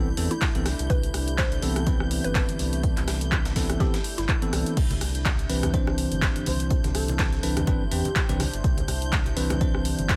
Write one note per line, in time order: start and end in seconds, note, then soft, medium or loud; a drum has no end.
0.00 0.14 C2 medium
0.00 4.73 A3 medium
0.00 4.73 D4 medium
0.00 10.16 D4 medium
0.00 0.17 E4 medium
0.00 4.73 E4 medium
0.00 10.16 G4 medium
0.00 10.16 E5 medium
0.00 4.73 B5 medium
0.00 4.76 G6 medium
0.17 0.29 E2 loud
0.17 0.32 E3 medium
0.17 0.32 B3 medium
0.17 0.32 C4 medium
0.17 0.32 A4 medium
0.17 closed hi-hat medium
0.17 open hi-hat loud
0.31 0.55 E4 loud
0.31 closed hi-hat medium
0.41 kick loud
0.41 snare loud
0.41 clap loud
0.41 closed hi-hat medium
0.55 0.75 C2 loud
0.55 0.67 E3 medium
0.55 0.67 B3 medium
0.55 0.67 C4 medium
0.55 0.67 A4 medium
0.55 closed hi-hat medium
0.66 cross-stick medium
0.66 snare medium
0.66 closed hi-hat medium
0.66 open hi-hat medium
0.79 0.88 C2 medium
0.79 closed hi-hat medium
0.79 closed hi-hat soft
0.90 1.11 C2 loud
0.90 1.23 B4 medium
0.90 kick loud
0.90 closed hi-hat medium
1.03 closed hi-hat medium
1.14 1.60 C2 medium
1.14 cross-stick medium
1.14 closed hi-hat medium
1.14 open hi-hat loud
1.28 closed hi-hat medium
1.38 1.71 C5 loud
1.38 kick loud
1.38 snare loud
1.38 clap loud
1.38 closed hi-hat medium
1.52 closed hi-hat soft
1.62 2.21 C2 loud
1.62 1.84 E3 loud
1.62 1.84 B3 medium
1.62 1.84 C4 medium
1.62 1.84 A4 loud
1.62 closed hi-hat medium
1.62 open hi-hat medium
1.76 cross-stick medium
1.76 closed hi-hat medium
1.87 3.53 E3 medium
1.87 3.54 B3 medium
1.87 3.54 C4 medium
1.87 3.54 B4 loud
1.87 kick loud
1.87 closed hi-hat medium
2.00 cross-stick medium
2.11 closed hi-hat medium
2.11 open hi-hat loud
2.24 2.44 G1 medium
2.24 2.40 B4 medium
2.24 closed hi-hat medium
2.35 kick loud
2.35 snare loud
2.35 clap loud
2.35 closed hi-hat medium
2.49 2.58 G1 medium
2.49 closed hi-hat medium
2.49 closed hi-hat soft
2.59 2.93 C2 medium
2.59 closed hi-hat medium
2.59 open hi-hat medium
2.73 closed hi-hat medium
2.73 closed hi-hat soft
2.83 kick loud
2.83 closed hi-hat medium
2.97 3.06 C2 loud
2.97 snare soft
2.97 clap soft
2.97 closed hi-hat medium
3.08 3.53 C2 medium
3.08 cross-stick medium
3.08 snare loud
3.08 closed hi-hat medium
3.08 open hi-hat loud
3.21 closed hi-hat medium
3.21 closed hi-hat soft
3.32 kick loud
3.32 clap loud
3.32 closed hi-hat medium
3.45 snare loud
3.45 closed hi-hat soft
3.45 closed hi-hat medium
3.56 3.77 C2 loud
3.56 3.78 E3 medium
3.56 3.78 B3 medium
3.56 3.78 C4 medium
3.56 3.78 A4 medium
3.56 kick medium
3.56 snare loud
3.56 closed hi-hat medium
3.56 open hi-hat medium
3.70 cross-stick medium
3.70 closed hi-hat medium
3.80 3.95 E3 medium
3.80 3.95 B3 medium
3.80 3.95 C4 medium
3.80 4.04 G4 medium
3.80 3.95 A4 loud
3.80 kick loud
3.80 snare medium
3.80 closed hi-hat medium
3.94 snare loud
3.94 closed hi-hat soft
3.94 closed hi-hat medium
4.04 open hi-hat loud
4.18 4.27 G1 medium
4.18 4.42 E4 loud
4.18 snare medium
4.18 closed hi-hat medium
4.29 kick loud
4.29 clap loud
4.29 closed hi-hat medium
4.42 4.76 E3 loud
4.42 4.76 B3 medium
4.42 4.76 C4 medium
4.42 4.76 A4 loud
4.42 closed hi-hat medium
4.53 4.64 C2 loud
4.53 cross-stick medium
4.53 snare medium
4.53 closed hi-hat medium
4.53 open hi-hat medium
4.66 closed hi-hat medium
4.66 closed hi-hat soft
4.77 4.98 C2 loud
4.77 10.16 D4 medium
4.77 10.16 E4 medium
4.77 10.16 C5 medium
4.77 10.16 G6 medium
4.77 kick loud
4.77 closed hi-hat medium
4.77 crash medium
4.90 closed hi-hat medium
4.90 high conga medium
4.90 low conga medium
5.01 5.47 C2 medium
5.01 cross-stick medium
5.01 closed hi-hat medium
5.01 open hi-hat loud
5.01 muted conga soft
5.15 closed hi-hat medium
5.25 kick loud
5.25 snare loud
5.25 clap loud
5.25 closed hi-hat medium
5.25 muted conga medium
5.25 high conga medium
5.39 closed hi-hat soft
5.49 6.08 C2 loud
5.49 5.71 E3 medium
5.49 5.71 C4 medium
5.49 5.71 D4 medium
5.49 5.71 B4 loud
5.49 closed hi-hat medium
5.49 open hi-hat loud
5.63 cross-stick medium
5.63 closed hi-hat medium
5.63 muted conga medium
5.63 high conga loud
5.63 low conga medium
5.74 7.41 E3 medium
5.74 7.41 C4 medium
5.74 7.41 D4 medium
5.74 7.41 C5 medium
5.74 kick loud
5.74 closed hi-hat medium
5.87 cross-stick medium
5.87 muted conga medium
5.98 closed hi-hat medium
5.98 open hi-hat loud
6.12 6.31 G1 medium
6.12 closed hi-hat medium
6.12 high conga medium
6.21 kick loud
6.21 snare loud
6.21 clap loud
6.21 closed hi-hat medium
6.21 muted conga medium
6.36 6.45 G1 medium
6.36 closed hi-hat soft
6.36 closed hi-hat medium
6.46 6.80 C2 medium
6.46 6.60 C5 medium
6.46 closed hi-hat medium
6.46 open hi-hat medium
6.46 muted conga medium
6.46 high conga medium
6.60 closed hi-hat soft
6.60 closed hi-hat medium
6.70 kick loud
6.70 closed hi-hat medium
6.84 6.93 C2 loud
6.84 snare soft
6.84 closed hi-hat medium
6.84 muted conga soft
6.84 high conga medium
6.84 low conga medium
6.95 7.40 C2 medium
6.95 7.43 A4 loud
6.95 cross-stick medium
6.95 open hi-hat medium
6.95 open hi-hat loud
7.08 closed hi-hat medium
7.08 muted conga medium
7.19 kick loud
7.19 snare loud
7.19 clap loud
7.19 closed hi-hat medium
7.19 high conga medium
7.33 snare soft
7.33 closed hi-hat soft
7.43 7.64 C2 loud
7.43 7.65 E3 medium
7.43 7.65 C4 medium
7.43 7.65 D4 medium
7.43 7.65 B4 medium
7.43 closed hi-hat medium
7.43 open hi-hat loud
7.43 muted conga medium
7.57 cross-stick medium
7.57 closed hi-hat soft
7.57 closed hi-hat medium
7.57 high conga loud
7.57 low conga medium
7.67 7.88 G1 medium
7.67 7.82 E3 medium
7.67 7.82 C4 medium
7.67 7.82 D4 medium
7.67 7.82 B4 loud
7.67 kick loud
7.67 closed hi-hat medium
7.67 muted conga medium
7.91 8.03 E2 loud
7.91 8.06 E3 medium
7.91 8.06 C4 medium
7.91 8.06 D4 medium
7.91 8.40 G4 loud
7.91 8.06 B4 medium
7.91 closed hi-hat medium
7.91 open hi-hat loud
8.05 closed hi-hat medium
8.05 muted conga medium
8.05 high conga medium
8.16 kick loud
8.16 snare loud
8.16 clap loud
8.16 closed hi-hat medium
8.29 8.49 C2 loud
8.29 8.41 E3 medium
8.29 8.41 C4 medium
8.29 8.41 D4 medium
8.29 8.41 B4 loud
8.29 closed hi-hat medium
8.29 muted conga medium
8.40 cross-stick medium
8.40 snare medium
8.40 closed hi-hat medium
8.40 open hi-hat medium
8.40 high conga loud
8.54 8.62 G1 medium
8.54 closed hi-hat medium
8.54 closed hi-hat soft
8.64 8.85 C2 loud
8.64 kick loud
8.64 closed hi-hat medium
8.64 muted conga soft
8.78 closed hi-hat medium
8.78 high conga loud
8.78 low conga medium
8.88 9.34 C2 medium
8.88 cross-stick medium
8.88 closed hi-hat medium
8.88 open hi-hat loud
8.88 muted conga medium
9.02 closed hi-hat medium
9.13 kick loud
9.13 snare loud
9.13 clap loud
9.13 closed hi-hat medium
9.13 high conga medium
9.26 closed hi-hat soft
9.26 muted conga soft
9.37 9.95 C2 loud
9.37 9.58 E3 medium
9.37 9.58 C4 medium
9.37 9.58 D4 medium
9.37 9.58 B4 loud
9.37 closed hi-hat medium
9.37 open hi-hat loud
9.50 cross-stick medium
9.50 closed hi-hat medium
9.50 muted conga medium
9.50 high conga medium
9.50 low conga medium
9.61 10.16 E3 medium
9.61 10.16 C4 medium
9.61 10.16 D4 medium
9.61 10.16 C5 medium
9.61 kick loud
9.61 closed hi-hat medium
9.75 cross-stick medium
9.85 closed hi-hat medium
9.85 open hi-hat loud
9.85 muted conga medium
9.99 10.16 G1 medium
9.99 closed hi-hat medium
9.99 high conga medium
10.09 kick loud
10.09 snare loud
10.09 clap loud
10.09 closed hi-hat medium
10.09 muted conga medium